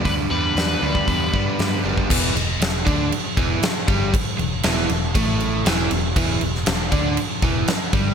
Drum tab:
CC |----------------|x-x-x-x-x-x-x-x-|x-x-x-x-x-x-x-x-|x-x-x-x-x-x-x-x-|
HH |o---o---o---o---|----------------|----------------|----------------|
SD |----o-------o---|----o-------o---|----o-------o---|---oo-------o---|
BD |o------oo-o----o|o-----o---o---o-|o-------o-------|o-----o---o---o-|